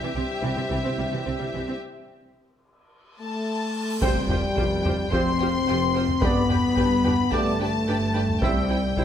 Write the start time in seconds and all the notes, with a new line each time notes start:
Already playing: G2 G3 C4 E4 G4 E5
0.02 C3 E3
0.16 C2 C3 C4
0.42 C2 C3 E3
0.56 C3 C4
0.70 C2 C3 E3
0.84 C3 C4
0.97 C2 C3 G3
1.11 C3 E3
1.26 C2 C3 C4
1.40 C3 G3
1.54 C2 C3 E3
1.67 C3 C4
1.81 cymbal swell
3.19 A3 A5
4.01 F1 F2 G3 C4 F4 G4 C5 G5, taiko, impact
4.29 F4 G4 C5 G5, taiko low
4.55 F1 F2 F4 G4 C5 G5, taiko
4.83 F4 G4 C5 G5, taiko low
5.10 F1 F2 G3 C4 F4 G4 C5 G5 C6, taiko
5.39 F4 G4 C5 G5
5.67 F1 F2 F4 G4 C5 G5
5.94 F4 G4 C5 G5
6.09 taiko low
6.21 G1 G2 G3 B3 D4 G4 B4 D5 G5 B5, taiko
6.49 D4 G4 B4 G5, taiko low
6.76 G1 G2 D4 G4 B4 G5, taiko
7.04 D4 G4 B4 G5, taiko low
7.31 G1 G2 G3 A3 B3 D4 G4 B4 D5 G5 A5, taiko
7.59 A3 D4 G4 B4 G5 A5
7.86 G1 G2 D4 G4 B4 G5
8.14 D4 G4 B4 G5
8.29 taiko low
8.40 C2 C3 G3 C4 E4 C5 E5 G5, taiko
8.69 E4 C5 G5
8.97 C2 C3 E4 C5 G5, taiko